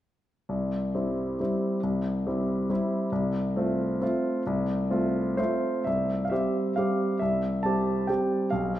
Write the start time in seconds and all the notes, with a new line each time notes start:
0.49 C2
0.95 G3 C4 E4
1.40 G3 C4 E4
1.83 C2
2.26 G3 C4 E4
2.70 G3 C4 E4
3.12 C2
3.56 A3 C4 F4
4.01 A3 C4 F4
4.46 C2
4.90 A3 C4 F4
5.37 A3 C4 F4 C5
5.84 C2 E5
6.25 F5
6.30 G3 C4 G4 E5
6.76 G3 C4 G4 F5
7.19 C2 E5
7.63 G3 C4 G4 A5
8.07 G3 C4 G4 G5
8.51 B1 F5